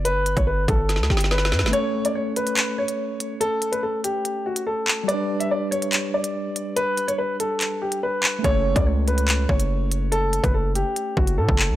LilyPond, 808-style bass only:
\new Staff \with { instrumentName = "808-style bass" } { \clef bass \time 4/4 \key g \lydian \tempo 4 = 143 fis,,32 g,,8~ g,,32 g,,8. g,,8. d,16 g,,4 g,16 g,,16 | r1 | r1 | r1 |
r1 | fis,,8. cis,4.~ cis,16 fis,,4.~ | fis,,8. fis,,4 r8. fis,,8 a,16 fis,,8 cis,16 | }